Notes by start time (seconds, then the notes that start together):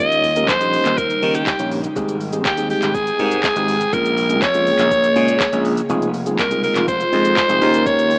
Already playing: D#2 C#3 G3 A#3 C#4 D#4 G4 A#4
0.00 D#5
0.12 closed hi-hat, shaker
0.24 open hi-hat, shaker
0.36 A#3 C#4 D#4 G4 A#4, closed hi-hat, shaker
0.48 A#1 C5, kick, clap, shaker
0.61 A#3 C#4 D#4 G4 D#5, closed hi-hat, shaker
0.73 open hi-hat, shaker
0.85 D#2, clap, closed hi-hat, shaker
0.98 A#4, kick, shaker
1.10 closed hi-hat, shaker
1.22 D#3 A#3 C#4 D#4 G4 A#4, open hi-hat, shaker
1.35 G4, closed hi-hat, shaker
1.47 kick, clap, shaker
1.59 A#1 A#3 C#4 D#4 G4 C#5, closed hi-hat, shaker
1.71 open hi-hat, shaker
1.84 closed hi-hat, shaker
1.96 G#1 C3 G#3 C4 D#4 G4 G#4 G5, kick, shaker
2.08 closed hi-hat, shaker
2.21 open hi-hat, shaker
2.33 G#3 C4 D#4 G4 G#4, closed hi-hat, shaker
2.45 D#2 G4, kick, clap, shaker
2.57 G#3 C4 D#4 G4 G#4, closed hi-hat, shaker
2.70 G4, open hi-hat, shaker
2.82 G#1, clap, closed hi-hat, shaker
2.94 G#4, kick, shaker
3.07 closed hi-hat, shaker
3.19 G#2 G#3 C4 D#4 G4 A#4, open hi-hat, shaker
3.31 closed hi-hat, shaker
3.43 kick, clap, shaker
3.56 G#1 G#3 C4 D#4 G4 G#4, closed hi-hat, shaker
3.68 open hi-hat, shaker
3.81 closed hi-hat, shaker
3.93 A#1 C#3 G#3 A#3 C#4 F4 G#4 A#4, kick, shaker
4.05 closed hi-hat, shaker
4.17 open hi-hat, shaker
4.30 G#3 A#3 C#4 F4 G#4, closed hi-hat, shaker
4.42 F2 C#5, kick, clap, shaker
4.54 G#3 A#3 C#4 F4 G#4, closed hi-hat, shaker
4.67 open hi-hat, shaker
4.79 A#1, clap, closed hi-hat, shaker
4.91 kick, shaker
5.03 closed hi-hat, shaker
5.16 A#2 G#3 A#3 C#4 F4 G#4, open hi-hat, shaker
5.28 closed hi-hat, shaker
5.40 kick, clap, shaker
5.53 A#1 G#3 A#3 C#4 F4 G#4, closed hi-hat, shaker
5.65 open hi-hat, shaker
5.77 closed hi-hat, shaker
5.89 F1 D#3 G#3 C4 D#4 F4 G#4, shaker
6.02 closed hi-hat, shaker
6.14 open hi-hat, shaker
6.26 G#3 C4 D#4 F4 G#4, closed hi-hat, shaker
6.39 C2 A#4, kick, clap, shaker
6.51 G#3 C4 D#4 F4 G#4, closed hi-hat, shaker
6.63 A#4, open hi-hat, shaker
6.76 F1, clap, closed hi-hat, shaker
6.88 C5, kick, shaker
7.00 closed hi-hat, shaker
7.12 F2 G#3 C4 D#4 F4 G#4, open hi-hat, shaker
7.25 closed hi-hat, shaker
7.37 kick, clap, shaker
7.49 F1 G#3 C4 D#4 F4 G#4, closed hi-hat, shaker
7.61 D#2 C#3 G3 A#3 C#4 D#4 G4 A#4, open hi-hat, shaker
7.74 closed hi-hat, shaker
7.86 C#5, kick, shaker
7.99 closed hi-hat, shaker
8.11 open hi-hat, shaker